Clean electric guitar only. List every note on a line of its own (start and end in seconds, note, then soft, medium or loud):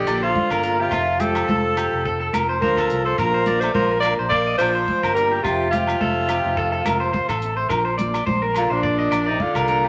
0.07 0.22 D5 medium
0.23 0.50 C5 medium
0.52 0.62 A#4 medium
0.64 0.78 A#4 medium
0.79 0.92 G4 medium
0.92 1.19 F4 medium
1.20 1.47 G4 medium
1.48 1.75 A4 medium
1.77 2.04 G4 medium
2.06 2.19 A4 medium
2.20 2.33 A4 medium
2.34 2.48 A#4 medium
2.49 2.61 C5 medium
2.62 2.77 C5 medium
2.78 3.04 A4 medium
3.06 3.18 C5 medium
3.19 3.33 A#4 medium
3.34 3.46 C5 medium
3.47 3.74 D5 medium
3.75 3.90 C5 medium
3.91 4.17 A#4 medium
4.19 4.31 C5 medium
4.32 4.46 D5 medium
4.47 4.59 D#5 medium
4.60 4.75 D5 medium
4.75 5.02 C5 medium
5.03 5.15 A#4 medium
5.16 5.31 A#4 medium
5.31 5.43 G4 medium
5.44 5.71 F4 medium
5.72 5.99 G4 medium
6.01 6.28 A4 medium
6.29 6.56 G4 medium
6.57 6.71 A4 medium
6.72 6.85 A4 medium
6.86 7.00 A#4 medium
7.00 7.12 C5 medium
7.13 7.28 C5 medium
7.29 7.56 A4 medium
7.57 7.69 C5 medium
7.69 7.84 A#4 medium
7.85 7.97 C5 medium
7.98 8.25 D5 medium
8.26 8.41 C5 medium
8.42 8.69 A#4 medium
8.70 8.83 C5 medium
8.83 8.98 D5 medium
8.99 9.11 D#5 medium
9.11 9.25 D5 medium
9.27 9.54 D5 medium
9.56 9.68 A#4 medium
9.69 9.83 A#4 medium
9.84 9.88 G4 medium